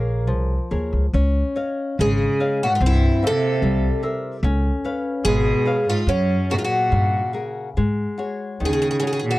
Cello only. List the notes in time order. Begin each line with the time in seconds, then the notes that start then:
1.99 C#3
2.64 A#2
2.71 G#2
2.83 G2
3.26 C3
5.25 B2
5.88 G#2
6.08 F#2
6.53 A#2
6.58 G#2
6.65 A#2
8.65 C#3
9.25 A#2